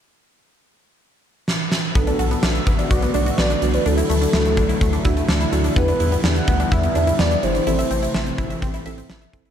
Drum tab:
HH |----------------|xxxx-xxxxxxx-xxx|xxxx-xxxxxxx-xxx|xxxx-xxxxxxx-xxx|
SD |------------o-o-|----o-------o---|----o-------o---|----o-------o---|
BD |----------------|o-----o-o-------|------o-o-o-----|o-----o-o-------|

HH |xxxx-xxxxxxx-xxx|
SD |----o-------o---|
BD |------o-o-----o-|